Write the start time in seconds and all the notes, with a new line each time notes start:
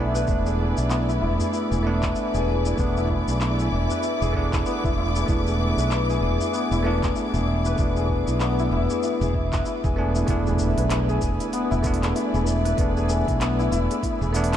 Already playing: B1 A3 B3 D4 E4 G#4 B4 D5 E5
0.00 D4
0.15 B4, shaker
0.27 E1 A3 B3 D4 E4 D6, kick, shaker
0.46 G#4, shaker
0.59 G#4
0.77 B1 E4, shaker
0.90 B3, clap, shaker
1.09 E4, shaker
1.21 E1 E4
1.40 G#4, udu, shaker
1.53 E4, shaker
1.71 E1 G#4, shaker
1.83 A3 B3 D4 E5
2.03 B4, kick, clap, shaker
2.16 E4, shaker
2.34 E1 G#4, shaker
2.47 G#4
2.66 E4, shaker
2.76 E1 A3 B3, kick, shaker
2.80 D4
2.97 E4, shaker
3.09 E4, kick
3.28 B1 G#4, shaker
3.41 E4, clap, shaker
3.59 G#4, shaker
3.72 E1 E5
3.90 B4, udu, shaker
4.03 E4, shaker
4.22 E1 G#4, shaker
4.33 A3 B3 G#4, kick
4.37 D4
4.53 E4, kick, clap, shaker
4.66 B3, shaker
4.84 E1 E4, kick, shaker
4.97 E4
5.16 G#4, shaker
5.26 E1 A3 B3 D4 E4, kick, shaker
5.47 G#4, shaker
5.60 E5
5.77 B1 B4, shaker
5.91 E4, clap, shaker
6.10 G#4, shaker
6.21 E1 G#4
6.40 E4, udu, shaker
6.53 B3, shaker
6.71 E1 E4, shaker
6.83 A3 B3 E4
6.87 D4
7.03 G#4, kick, clap, shaker
7.16 E4, shaker
7.34 E1 G#4, shaker
7.47 E5
7.65 B4, shaker
7.76 E1 A3 B3 E4, kick, shaker
7.80 D4
7.96 G#4, shaker
8.09 G#4, kick
8.28 B1 E4, shaker
8.40 B3, clap, shaker
8.59 E4, shaker
8.71 E1 E4
8.90 G#4, udu, shaker
9.03 E4, shaker
9.21 E1 G#4, shaker
9.34 E5, kick
9.53 B4, kick, clap, shaker
9.66 E4, shaker
9.84 E1 G#4, kick, shaker
9.96 A3 B3 D4 G#4
10.15 E4, shaker
10.26 E1 A3 B3 E4 B4 D5, kick, open hi-hat, impact, shaker
10.30 D4
10.47 G#4, shaker
10.59 E5, shaker
10.78 B1 B4, open hi-hat, shaker
10.90 E4, clap, open hi-hat, shaker
11.09 G#4, shaker
11.22 E1 G#4, kick, open hi-hat, shaker
11.40 E4, open hi-hat, shaker
11.53 B3, open hi-hat, shaker
11.71 E1 E4, shaker
11.83 A3 B3 D4 E4, kick, open hi-hat, shaker
11.94 open hi-hat
12.03 G#4, clap, open hi-hat, shaker
12.15 E4, open hi-hat, shaker
12.34 E1 G#4, shaker
12.47 E5, shaker
12.65 B4, open hi-hat, shaker
12.77 E1 A3 B3 E4, kick, open hi-hat, shaker
12.81 D4
12.97 G#4, shaker
13.09 G#4, shaker
13.28 B1 E4, kick, open hi-hat, shaker
13.41 B3, clap, open hi-hat, shaker
13.59 E4, shaker
13.71 E1 E4, open hi-hat, shaker
13.90 G#4, open hi-hat, shaker
14.03 E4, kick, open hi-hat, shaker
14.21 E1 G#4, shaker
14.32 A3 B3 D4 E5, open hi-hat, shaker
14.44 open hi-hat
14.52 B4, clap, open hi-hat, shaker